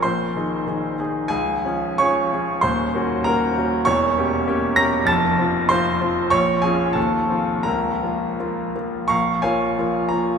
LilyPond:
<<
  \new Staff \with { instrumentName = "Grand piano" } { \time 2/4 \key bes \minor \tempo 4 = 94 <c'' c'''>4. r8 | <aes' aes''>4 <des'' des'''>4 | <c'' c'''>4 <bes' bes''>4 | <cis'' cis'''>4. <bes'' bes'''>8 |
<a'' a'''>4 <c'' c'''>4 | <des'' des'''>8 <aes' aes''>8 <a' a''>4 | <bes' bes''>4. r8 | <f'' bes'' des'''>8 <des'' f'' aes''>4 bes''8 | }
  \new Staff \with { instrumentName = "Grand piano" } { \time 2/4 \key bes \minor bes,,8 <ees ees' aes'>8 <ees ees' aes'>8 <ees ees' aes'>8 | des,8 <f des' aes'>8 <f des' aes'>8 <f des' aes'>8 | <ees,, ees,>8 <bes des' ges'>8 <bes des' ges'>8 <bes des' ges'>8 | <e,, e,>8 <bes cis' g'>8 <bes cis' g'>8 <bes cis' g'>8 |
<f,, f,>8 <f c' f'>8 <f c' f'>8 <f c' f'>8 | bes,,8 <f des' f'>8 ees,8 <f c' f'>8 | des,8 <f bes f'>8 <f bes f'>8 <f bes f'>8 | bes,,8 <f bes f'>8 <f bes f'>8 <f bes f'>8 | }
>>